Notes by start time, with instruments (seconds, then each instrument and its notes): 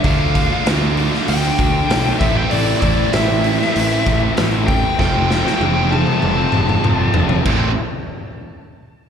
0.02 picked electric bass D2, distorted electric guitar D3 A3 D4 F4, lead electric guitar F5, kick, open hi-hat
0.34 distorted electric guitar D3 A3 D4 F4, kick, open hi-hat
0.50 distorted electric guitar A3 D4 F4
0.64 picked electric bass D2, distorted electric guitar D3 A3 D4 F4, snare, open hi-hat
0.96 distorted electric guitar D3 A3 D4 F4, open hi-hat
1.10 distorted electric guitar A3 D4 F4, snare
1.28 picked electric bass D2, lead electric guitar G5, open hi-hat
1.42 distorted electric guitar A3 D4 F4
1.57 picked electric bass D2, distorted electric guitar D3 A3 D4 F4, kick, open hi-hat
1.89 picked electric bass B1, distorted electric guitar D3 A3 D4 F4, snare, open hi-hat
2.04 distorted electric guitar A3 D4 F4
2.19 picked electric bass A1, distorted electric guitar A2 E3 A3 C4 E4, lead electric guitar E5, kick, open hi-hat
2.36 distorted electric guitar A3 C4 E4, lead electric guitar G5
2.51 picked electric bass A1, distorted electric guitar A2 E3 A3 C4 E4, lead electric guitar D5, open hi-hat
2.81 picked electric bass A1, distorted electric guitar E3 A3 C4 E4, lead electric guitar D5, kick, open hi-hat
2.98 distorted electric guitar A3 C4 E4
3.12 picked electric bass A1, distorted electric guitar A2 E3 A3 C4 E4, lead electric guitar E5, snare, open hi-hat
3.44 distorted electric guitar E3 A3 C4 E4, open hi-hat
3.60 distorted electric guitar A3 C4 E4, snare
3.76 picked electric bass A1, open hi-hat
3.90 distorted electric guitar A3 C4 E4
4.05 picked electric bass A1, distorted electric guitar E3 A3 C4 E4, kick, snare, open hi-hat
4.35 picked electric bass A1, distorted electric guitar A2 E3 A3 C4 E4, snare, open hi-hat
4.50 distorted electric guitar A3 C4 E4
4.66 distorted electric guitar E3 A3 C4 E4, lead electric guitar G5, kick, open hi-hat
4.81 distorted electric guitar A3 C4 E4
4.97 picked electric bass F1, distorted electric guitar F2 C3 F3 A3 C4 F4, lead electric guitar G5, kick, snare
5.29 distorted electric guitar F3 A3 C4 F4, lead electric guitar G5, snare
5.44 distorted electric guitar A3 C4 F4, snare
5.60 picked electric bass F1, distorted electric guitar F3 A3 C4 F4, high tom
5.90 distorted electric guitar F3 A3 C4 F4, lead electric guitar A5, high tom
6.05 distorted electric guitar A3 C4 F4, mid tom
6.20 picked electric bass F1, lead electric guitar A5, mid tom
6.36 distorted electric guitar A3 C4 F4
6.51 distorted electric guitar F3 A3 C4 F4, mid tom
6.55 picked electric bass F1
6.69 mid tom
6.81 distorted electric guitar F3 A3 C4 F4, mid tom
6.86 picked electric bass F1
6.97 distorted electric guitar A3 C4 F4
7.12 distorted electric guitar F3 A3 C4 F4, floor tom
7.16 picked electric bass F1
7.28 distorted electric guitar A3 C4 F4, floor tom
7.44 picked electric bass A1, distorted electric guitar A2 E3 A3 C4 E4, kick, crash